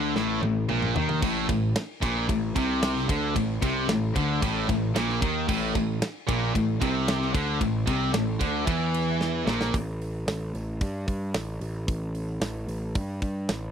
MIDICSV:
0, 0, Header, 1, 4, 480
1, 0, Start_track
1, 0, Key_signature, 0, "minor"
1, 0, Tempo, 533333
1, 1102, Time_signature, 4, 2, 24, 8
1, 12343, End_track
2, 0, Start_track
2, 0, Title_t, "Distorted electric guitar"
2, 0, Program_c, 0, 30
2, 0, Note_on_c, 0, 50, 107
2, 132, Note_off_c, 0, 50, 0
2, 145, Note_on_c, 0, 45, 113
2, 367, Note_off_c, 0, 45, 0
2, 378, Note_on_c, 0, 45, 73
2, 572, Note_off_c, 0, 45, 0
2, 622, Note_on_c, 0, 46, 101
2, 854, Note_off_c, 0, 46, 0
2, 858, Note_on_c, 0, 51, 100
2, 1091, Note_off_c, 0, 51, 0
2, 1095, Note_on_c, 0, 45, 109
2, 1328, Note_off_c, 0, 45, 0
2, 1339, Note_on_c, 0, 45, 71
2, 1532, Note_off_c, 0, 45, 0
2, 1817, Note_on_c, 0, 46, 100
2, 2052, Note_off_c, 0, 46, 0
2, 2059, Note_on_c, 0, 45, 77
2, 2252, Note_off_c, 0, 45, 0
2, 2303, Note_on_c, 0, 48, 102
2, 2774, Note_off_c, 0, 48, 0
2, 2778, Note_on_c, 0, 50, 98
2, 3011, Note_off_c, 0, 50, 0
2, 3016, Note_on_c, 0, 45, 75
2, 3210, Note_off_c, 0, 45, 0
2, 3255, Note_on_c, 0, 48, 103
2, 3489, Note_off_c, 0, 48, 0
2, 3502, Note_on_c, 0, 45, 67
2, 3692, Note_off_c, 0, 45, 0
2, 3733, Note_on_c, 0, 50, 110
2, 3968, Note_off_c, 0, 50, 0
2, 3978, Note_on_c, 0, 45, 117
2, 4208, Note_off_c, 0, 45, 0
2, 4219, Note_on_c, 0, 45, 75
2, 4409, Note_off_c, 0, 45, 0
2, 4454, Note_on_c, 0, 46, 105
2, 4687, Note_off_c, 0, 46, 0
2, 4696, Note_on_c, 0, 51, 101
2, 4927, Note_off_c, 0, 51, 0
2, 4931, Note_on_c, 0, 45, 109
2, 5165, Note_off_c, 0, 45, 0
2, 5177, Note_on_c, 0, 45, 78
2, 5367, Note_off_c, 0, 45, 0
2, 5654, Note_on_c, 0, 46, 104
2, 5886, Note_off_c, 0, 46, 0
2, 5891, Note_on_c, 0, 45, 78
2, 6083, Note_off_c, 0, 45, 0
2, 6134, Note_on_c, 0, 48, 100
2, 6604, Note_off_c, 0, 48, 0
2, 6608, Note_on_c, 0, 50, 101
2, 6842, Note_off_c, 0, 50, 0
2, 6850, Note_on_c, 0, 45, 75
2, 7042, Note_off_c, 0, 45, 0
2, 7084, Note_on_c, 0, 48, 101
2, 7319, Note_off_c, 0, 48, 0
2, 7322, Note_on_c, 0, 45, 72
2, 7518, Note_off_c, 0, 45, 0
2, 7562, Note_on_c, 0, 50, 98
2, 7792, Note_off_c, 0, 50, 0
2, 7795, Note_on_c, 0, 52, 109
2, 8515, Note_off_c, 0, 52, 0
2, 8519, Note_on_c, 0, 46, 99
2, 8758, Note_off_c, 0, 46, 0
2, 12343, End_track
3, 0, Start_track
3, 0, Title_t, "Picked electric bass"
3, 0, Program_c, 1, 34
3, 0, Note_on_c, 1, 38, 103
3, 125, Note_off_c, 1, 38, 0
3, 146, Note_on_c, 1, 33, 93
3, 367, Note_off_c, 1, 33, 0
3, 386, Note_on_c, 1, 33, 81
3, 608, Note_off_c, 1, 33, 0
3, 625, Note_on_c, 1, 34, 93
3, 847, Note_off_c, 1, 34, 0
3, 866, Note_on_c, 1, 39, 94
3, 1087, Note_off_c, 1, 39, 0
3, 1101, Note_on_c, 1, 33, 97
3, 1324, Note_off_c, 1, 33, 0
3, 1341, Note_on_c, 1, 33, 81
3, 1565, Note_off_c, 1, 33, 0
3, 1823, Note_on_c, 1, 34, 105
3, 2045, Note_off_c, 1, 34, 0
3, 2065, Note_on_c, 1, 33, 80
3, 2286, Note_off_c, 1, 33, 0
3, 2303, Note_on_c, 1, 36, 98
3, 2747, Note_off_c, 1, 36, 0
3, 2783, Note_on_c, 1, 38, 96
3, 3004, Note_off_c, 1, 38, 0
3, 3022, Note_on_c, 1, 33, 74
3, 3244, Note_off_c, 1, 33, 0
3, 3258, Note_on_c, 1, 36, 102
3, 3481, Note_off_c, 1, 36, 0
3, 3492, Note_on_c, 1, 33, 80
3, 3718, Note_off_c, 1, 33, 0
3, 3742, Note_on_c, 1, 38, 101
3, 3963, Note_off_c, 1, 38, 0
3, 3982, Note_on_c, 1, 33, 98
3, 4203, Note_off_c, 1, 33, 0
3, 4221, Note_on_c, 1, 33, 87
3, 4442, Note_off_c, 1, 33, 0
3, 4460, Note_on_c, 1, 34, 93
3, 4681, Note_off_c, 1, 34, 0
3, 4702, Note_on_c, 1, 39, 100
3, 4921, Note_off_c, 1, 39, 0
3, 4938, Note_on_c, 1, 33, 92
3, 5159, Note_off_c, 1, 33, 0
3, 5173, Note_on_c, 1, 33, 84
3, 5396, Note_off_c, 1, 33, 0
3, 5656, Note_on_c, 1, 34, 108
3, 5877, Note_off_c, 1, 34, 0
3, 5896, Note_on_c, 1, 33, 80
3, 6117, Note_off_c, 1, 33, 0
3, 6134, Note_on_c, 1, 36, 95
3, 6578, Note_off_c, 1, 36, 0
3, 6609, Note_on_c, 1, 38, 102
3, 6833, Note_off_c, 1, 38, 0
3, 6849, Note_on_c, 1, 33, 81
3, 7072, Note_off_c, 1, 33, 0
3, 7088, Note_on_c, 1, 36, 100
3, 7312, Note_off_c, 1, 36, 0
3, 7322, Note_on_c, 1, 33, 81
3, 7549, Note_off_c, 1, 33, 0
3, 7566, Note_on_c, 1, 38, 101
3, 7791, Note_off_c, 1, 38, 0
3, 7805, Note_on_c, 1, 40, 100
3, 8492, Note_off_c, 1, 40, 0
3, 8522, Note_on_c, 1, 34, 93
3, 8749, Note_off_c, 1, 34, 0
3, 8765, Note_on_c, 1, 33, 86
3, 9222, Note_off_c, 1, 33, 0
3, 9244, Note_on_c, 1, 33, 82
3, 9475, Note_off_c, 1, 33, 0
3, 9489, Note_on_c, 1, 33, 91
3, 9718, Note_off_c, 1, 33, 0
3, 9729, Note_on_c, 1, 43, 89
3, 9958, Note_off_c, 1, 43, 0
3, 9970, Note_on_c, 1, 43, 80
3, 10199, Note_off_c, 1, 43, 0
3, 10211, Note_on_c, 1, 33, 84
3, 10440, Note_off_c, 1, 33, 0
3, 10450, Note_on_c, 1, 33, 92
3, 10680, Note_off_c, 1, 33, 0
3, 10692, Note_on_c, 1, 33, 85
3, 11150, Note_off_c, 1, 33, 0
3, 11170, Note_on_c, 1, 33, 86
3, 11402, Note_off_c, 1, 33, 0
3, 11412, Note_on_c, 1, 33, 89
3, 11643, Note_off_c, 1, 33, 0
3, 11657, Note_on_c, 1, 43, 90
3, 11887, Note_off_c, 1, 43, 0
3, 11900, Note_on_c, 1, 43, 87
3, 12129, Note_off_c, 1, 43, 0
3, 12138, Note_on_c, 1, 33, 88
3, 12343, Note_off_c, 1, 33, 0
3, 12343, End_track
4, 0, Start_track
4, 0, Title_t, "Drums"
4, 143, Note_on_c, 9, 38, 65
4, 233, Note_off_c, 9, 38, 0
4, 384, Note_on_c, 9, 48, 77
4, 474, Note_off_c, 9, 48, 0
4, 620, Note_on_c, 9, 47, 90
4, 710, Note_off_c, 9, 47, 0
4, 742, Note_on_c, 9, 45, 75
4, 832, Note_off_c, 9, 45, 0
4, 862, Note_on_c, 9, 43, 106
4, 952, Note_off_c, 9, 43, 0
4, 982, Note_on_c, 9, 43, 85
4, 1072, Note_off_c, 9, 43, 0
4, 1102, Note_on_c, 9, 36, 105
4, 1102, Note_on_c, 9, 49, 95
4, 1102, Note_on_c, 9, 55, 76
4, 1192, Note_off_c, 9, 36, 0
4, 1192, Note_off_c, 9, 49, 0
4, 1192, Note_off_c, 9, 55, 0
4, 1341, Note_on_c, 9, 36, 92
4, 1342, Note_on_c, 9, 51, 71
4, 1431, Note_off_c, 9, 36, 0
4, 1432, Note_off_c, 9, 51, 0
4, 1582, Note_on_c, 9, 38, 120
4, 1582, Note_on_c, 9, 51, 98
4, 1672, Note_off_c, 9, 38, 0
4, 1672, Note_off_c, 9, 51, 0
4, 1823, Note_on_c, 9, 36, 101
4, 1823, Note_on_c, 9, 51, 76
4, 1913, Note_off_c, 9, 36, 0
4, 1913, Note_off_c, 9, 51, 0
4, 2062, Note_on_c, 9, 36, 86
4, 2063, Note_on_c, 9, 51, 98
4, 2152, Note_off_c, 9, 36, 0
4, 2153, Note_off_c, 9, 51, 0
4, 2303, Note_on_c, 9, 36, 101
4, 2307, Note_on_c, 9, 51, 76
4, 2393, Note_off_c, 9, 36, 0
4, 2397, Note_off_c, 9, 51, 0
4, 2544, Note_on_c, 9, 38, 113
4, 2544, Note_on_c, 9, 51, 113
4, 2634, Note_off_c, 9, 38, 0
4, 2634, Note_off_c, 9, 51, 0
4, 2667, Note_on_c, 9, 38, 33
4, 2757, Note_off_c, 9, 38, 0
4, 2783, Note_on_c, 9, 36, 111
4, 2787, Note_on_c, 9, 51, 83
4, 2873, Note_off_c, 9, 36, 0
4, 2877, Note_off_c, 9, 51, 0
4, 3022, Note_on_c, 9, 36, 85
4, 3024, Note_on_c, 9, 51, 98
4, 3112, Note_off_c, 9, 36, 0
4, 3114, Note_off_c, 9, 51, 0
4, 3262, Note_on_c, 9, 36, 105
4, 3264, Note_on_c, 9, 51, 79
4, 3352, Note_off_c, 9, 36, 0
4, 3354, Note_off_c, 9, 51, 0
4, 3501, Note_on_c, 9, 38, 116
4, 3501, Note_on_c, 9, 51, 105
4, 3591, Note_off_c, 9, 38, 0
4, 3591, Note_off_c, 9, 51, 0
4, 3742, Note_on_c, 9, 36, 100
4, 3744, Note_on_c, 9, 51, 77
4, 3832, Note_off_c, 9, 36, 0
4, 3834, Note_off_c, 9, 51, 0
4, 3982, Note_on_c, 9, 36, 107
4, 3982, Note_on_c, 9, 51, 106
4, 4072, Note_off_c, 9, 36, 0
4, 4072, Note_off_c, 9, 51, 0
4, 4221, Note_on_c, 9, 36, 91
4, 4222, Note_on_c, 9, 51, 72
4, 4311, Note_off_c, 9, 36, 0
4, 4312, Note_off_c, 9, 51, 0
4, 4463, Note_on_c, 9, 38, 108
4, 4463, Note_on_c, 9, 51, 97
4, 4553, Note_off_c, 9, 38, 0
4, 4553, Note_off_c, 9, 51, 0
4, 4582, Note_on_c, 9, 38, 31
4, 4672, Note_off_c, 9, 38, 0
4, 4699, Note_on_c, 9, 36, 109
4, 4702, Note_on_c, 9, 51, 76
4, 4789, Note_off_c, 9, 36, 0
4, 4792, Note_off_c, 9, 51, 0
4, 4938, Note_on_c, 9, 49, 102
4, 4939, Note_on_c, 9, 36, 105
4, 5028, Note_off_c, 9, 49, 0
4, 5029, Note_off_c, 9, 36, 0
4, 5175, Note_on_c, 9, 51, 70
4, 5177, Note_on_c, 9, 36, 93
4, 5265, Note_off_c, 9, 51, 0
4, 5267, Note_off_c, 9, 36, 0
4, 5419, Note_on_c, 9, 38, 113
4, 5419, Note_on_c, 9, 51, 99
4, 5509, Note_off_c, 9, 38, 0
4, 5509, Note_off_c, 9, 51, 0
4, 5657, Note_on_c, 9, 36, 100
4, 5660, Note_on_c, 9, 51, 71
4, 5747, Note_off_c, 9, 36, 0
4, 5750, Note_off_c, 9, 51, 0
4, 5897, Note_on_c, 9, 36, 92
4, 5901, Note_on_c, 9, 51, 105
4, 5987, Note_off_c, 9, 36, 0
4, 5991, Note_off_c, 9, 51, 0
4, 6134, Note_on_c, 9, 36, 104
4, 6138, Note_on_c, 9, 51, 72
4, 6224, Note_off_c, 9, 36, 0
4, 6228, Note_off_c, 9, 51, 0
4, 6375, Note_on_c, 9, 38, 119
4, 6375, Note_on_c, 9, 51, 101
4, 6465, Note_off_c, 9, 38, 0
4, 6465, Note_off_c, 9, 51, 0
4, 6498, Note_on_c, 9, 38, 33
4, 6588, Note_off_c, 9, 38, 0
4, 6611, Note_on_c, 9, 36, 110
4, 6612, Note_on_c, 9, 51, 82
4, 6701, Note_off_c, 9, 36, 0
4, 6702, Note_off_c, 9, 51, 0
4, 6849, Note_on_c, 9, 36, 92
4, 6850, Note_on_c, 9, 51, 100
4, 6939, Note_off_c, 9, 36, 0
4, 6940, Note_off_c, 9, 51, 0
4, 7086, Note_on_c, 9, 51, 79
4, 7087, Note_on_c, 9, 36, 105
4, 7176, Note_off_c, 9, 51, 0
4, 7177, Note_off_c, 9, 36, 0
4, 7326, Note_on_c, 9, 38, 120
4, 7326, Note_on_c, 9, 51, 111
4, 7416, Note_off_c, 9, 38, 0
4, 7416, Note_off_c, 9, 51, 0
4, 7567, Note_on_c, 9, 36, 106
4, 7569, Note_on_c, 9, 51, 77
4, 7657, Note_off_c, 9, 36, 0
4, 7659, Note_off_c, 9, 51, 0
4, 7806, Note_on_c, 9, 36, 113
4, 7808, Note_on_c, 9, 51, 106
4, 7896, Note_off_c, 9, 36, 0
4, 7898, Note_off_c, 9, 51, 0
4, 8049, Note_on_c, 9, 51, 74
4, 8139, Note_off_c, 9, 51, 0
4, 8288, Note_on_c, 9, 38, 67
4, 8378, Note_off_c, 9, 38, 0
4, 8527, Note_on_c, 9, 38, 96
4, 8617, Note_off_c, 9, 38, 0
4, 8647, Note_on_c, 9, 38, 89
4, 8737, Note_off_c, 9, 38, 0
4, 8766, Note_on_c, 9, 36, 101
4, 8769, Note_on_c, 9, 46, 66
4, 8856, Note_off_c, 9, 36, 0
4, 8859, Note_off_c, 9, 46, 0
4, 9014, Note_on_c, 9, 46, 53
4, 9104, Note_off_c, 9, 46, 0
4, 9251, Note_on_c, 9, 38, 111
4, 9251, Note_on_c, 9, 46, 71
4, 9341, Note_off_c, 9, 38, 0
4, 9341, Note_off_c, 9, 46, 0
4, 9492, Note_on_c, 9, 46, 51
4, 9582, Note_off_c, 9, 46, 0
4, 9729, Note_on_c, 9, 36, 103
4, 9730, Note_on_c, 9, 46, 71
4, 9819, Note_off_c, 9, 36, 0
4, 9820, Note_off_c, 9, 46, 0
4, 9970, Note_on_c, 9, 36, 82
4, 9974, Note_on_c, 9, 46, 55
4, 10060, Note_off_c, 9, 36, 0
4, 10064, Note_off_c, 9, 46, 0
4, 10210, Note_on_c, 9, 38, 110
4, 10210, Note_on_c, 9, 46, 77
4, 10300, Note_off_c, 9, 38, 0
4, 10300, Note_off_c, 9, 46, 0
4, 10453, Note_on_c, 9, 46, 59
4, 10543, Note_off_c, 9, 46, 0
4, 10693, Note_on_c, 9, 36, 106
4, 10695, Note_on_c, 9, 46, 75
4, 10783, Note_off_c, 9, 36, 0
4, 10785, Note_off_c, 9, 46, 0
4, 10934, Note_on_c, 9, 46, 56
4, 11024, Note_off_c, 9, 46, 0
4, 11174, Note_on_c, 9, 38, 109
4, 11174, Note_on_c, 9, 46, 79
4, 11264, Note_off_c, 9, 38, 0
4, 11264, Note_off_c, 9, 46, 0
4, 11417, Note_on_c, 9, 46, 58
4, 11507, Note_off_c, 9, 46, 0
4, 11656, Note_on_c, 9, 46, 70
4, 11659, Note_on_c, 9, 36, 105
4, 11746, Note_off_c, 9, 46, 0
4, 11749, Note_off_c, 9, 36, 0
4, 11897, Note_on_c, 9, 46, 53
4, 11898, Note_on_c, 9, 36, 80
4, 11987, Note_off_c, 9, 46, 0
4, 11988, Note_off_c, 9, 36, 0
4, 12141, Note_on_c, 9, 38, 112
4, 12141, Note_on_c, 9, 46, 72
4, 12231, Note_off_c, 9, 38, 0
4, 12231, Note_off_c, 9, 46, 0
4, 12343, End_track
0, 0, End_of_file